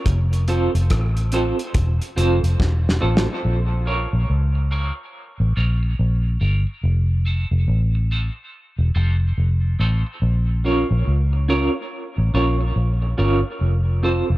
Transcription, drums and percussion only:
0.06 kick, closed hi-hat
0.33 closed hi-hat
0.48 closed hi-hat
0.75 closed hi-hat
0.90 kick, cross-stick, closed hi-hat
1.17 closed hi-hat
1.32 closed hi-hat
1.59 closed hi-hat
1.74 kick, closed hi-hat
2.02 closed hi-hat
2.18 closed hi-hat
2.44 closed hi-hat
2.60 kick, snare
2.89 snare
3.17 snare

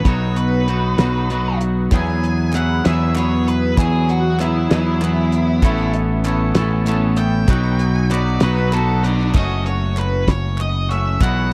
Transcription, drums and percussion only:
0.05 kick, closed hi-hat
0.36 closed hi-hat
0.68 closed hi-hat
0.98 snare, closed hi-hat
1.30 closed hi-hat
1.61 closed hi-hat
1.92 kick, clap, closed hi-hat
2.07 clap
2.23 clap, closed hi-hat
2.53 clap, closed hi-hat
2.85 snare, closed hi-hat
3.16 clap, closed hi-hat
3.48 closed hi-hat
3.78 kick, clap, closed hi-hat
3.94 clap
4.09 clap, closed hi-hat
4.40 clap, closed hi-hat
4.71 snare, closed hi-hat
5.02 clap, closed hi-hat
5.32 closed hi-hat
5.63 kick, clap, closed hi-hat
5.79 clap
5.93 clap, closed hi-hat
6.24 clap, closed hi-hat
6.55 snare, closed hi-hat
6.86 clap, closed hi-hat
7.16 closed hi-hat
7.48 kick, clap, closed hi-hat
7.65 clap
7.79 closed hi-hat
7.96 clap
8.10 clap, closed hi-hat
8.27 clap
8.40 snare, closed hi-hat
8.58 clap
8.73 clap, closed hi-hat
9.04 clap, closed hi-hat
9.20 clap
9.34 kick, clap, crash
9.66 closed hi-hat
9.97 clap, closed hi-hat
10.28 kick, snare, closed hi-hat
10.58 clap, closed hi-hat
10.91 closed hi-hat
11.21 kick, clap, closed hi-hat

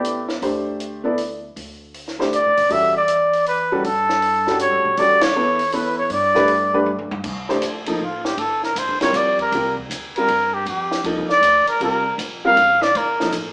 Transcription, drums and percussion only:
0.04 closed hi-hat
0.29 snare
0.42 open hi-hat
0.80 closed hi-hat
1.18 open hi-hat
1.57 open hi-hat
1.94 open hi-hat
2.08 snare
2.21 snare
2.33 closed hi-hat
2.57 open hi-hat
2.70 open hi-hat
3.08 closed hi-hat
3.33 open hi-hat
3.46 open hi-hat
3.84 open hi-hat
4.09 snare
4.22 open hi-hat
4.47 snare
4.59 closed hi-hat
4.97 open hi-hat
5.21 snare, ride
5.59 open hi-hat
5.72 open hi-hat
6.10 open hi-hat
6.35 snare
6.48 open hi-hat
6.86 high tom
6.99 high tom
7.11 high tom
7.24 kick, crash
7.49 snare
7.62 hi-hat pedal, ride
7.86 ride
8.25 snare
8.38 ride
8.63 snare
8.76 hi-hat pedal, ride
9.01 snare, ride
9.14 hi-hat pedal, ride
9.39 kick, ride
9.52 ride
9.77 kick
9.91 hi-hat pedal, ride
10.16 ride
10.28 ride
10.66 ride
10.91 snare
11.04 ride
11.29 snare
11.43 hi-hat pedal, ride
11.67 ride
11.81 ride
12.19 hi-hat pedal, ride
12.57 ride
12.82 snare
12.95 ride
13.20 snare
13.32 hi-hat pedal, ride

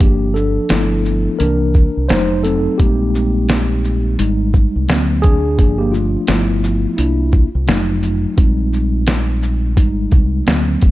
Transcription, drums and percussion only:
0.00 kick, closed hi-hat
0.36 shaker
0.69 snare, closed hi-hat
1.05 shaker
1.40 closed hi-hat
1.74 kick, shaker
2.09 snare, closed hi-hat
2.44 closed hi-hat, shaker
2.80 kick, closed hi-hat
3.15 shaker
3.49 snare, closed hi-hat
3.84 shaker
4.19 closed hi-hat
4.54 kick, shaker
4.89 snare, closed hi-hat
5.24 kick, closed hi-hat, shaker
5.59 kick, closed hi-hat
5.94 shaker
6.27 snare, closed hi-hat
6.64 shaker
6.98 closed hi-hat
7.32 kick, shaker
7.68 snare, closed hi-hat
8.03 closed hi-hat, shaker
8.38 kick, closed hi-hat
8.73 shaker
9.07 snare, closed hi-hat
9.43 shaker
9.77 kick, closed hi-hat
10.11 kick, closed hi-hat, shaker
10.47 snare, closed hi-hat
10.81 kick, closed hi-hat, shaker

